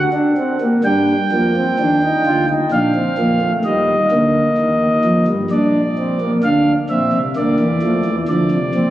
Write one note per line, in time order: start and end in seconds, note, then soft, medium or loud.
0.13 0.33 D4 medium
0.37 0.58 C4 medium
0.61 0.81 A#3 soft
0.84 1.14 G2 medium
0.84 1.14 G3 medium
0.84 1.14 D4 medium
0.84 2.46 G5 medium
1.32 1.61 F2 medium
1.32 1.61 F3 medium
1.32 1.52 A#3 medium
1.56 1.76 C4 medium
1.79 2.08 D#2 medium
1.79 2.08 D#3 medium
1.79 1.99 D4 medium
2.03 2.23 D#4 medium
2.26 2.55 D2 medium
2.26 2.55 D3 medium
2.26 2.46 F4 medium
2.49 2.69 D#4 medium
2.72 3.01 A#1 medium
2.72 3.01 A#2 medium
2.72 2.92 D4 medium
2.72 3.52 F5 medium
2.95 3.15 C4 medium
3.18 3.47 F2 medium
3.18 3.47 F3 medium
3.18 3.38 A#3 medium
3.42 3.62 A3 medium
3.65 3.94 D#2 medium
3.65 3.94 D#3 medium
3.65 3.94 G3 medium
3.65 5.25 D#5 medium
4.12 4.40 D2 medium
4.12 4.41 D3 medium
4.12 5.32 A#3 medium
4.58 4.87 D#2 medium
4.58 4.87 D#3 medium
5.05 5.25 F2 medium
5.05 5.25 F3 medium
5.28 5.48 G2 medium
5.28 5.48 G3 medium
5.51 6.31 A#1 medium
5.51 6.30 A#2 medium
5.51 5.80 D4 medium
5.51 6.30 D5 medium
5.98 6.18 C4 medium
6.21 6.41 A#3 medium
6.43 6.72 D2 medium
6.43 6.72 D3 medium
6.43 6.72 D4 medium
6.43 6.72 F5 medium
6.90 7.10 A#1 medium
6.90 7.10 A#2 medium
6.90 7.18 C4 medium
6.90 7.18 E5 medium
7.13 7.33 C2 medium
7.13 7.33 C3 medium
7.36 7.56 D2 medium
7.36 7.56 D3 medium
7.36 7.65 A#3 medium
7.36 8.15 D5 medium
7.60 7.79 E2 medium
7.60 7.79 E3 medium
7.82 8.02 F2 medium
7.82 8.02 F3 medium
7.82 8.11 A3 medium
8.05 8.25 E2 medium
8.05 8.25 E3 medium
8.28 8.48 D2 medium
8.28 8.48 D3 medium
8.28 8.57 F3 medium
8.28 8.90 D5 medium
8.51 8.71 C2 medium
8.51 8.71 C3 medium
8.75 8.90 A#1 medium
8.75 8.90 A#2 medium
8.75 8.90 C4 medium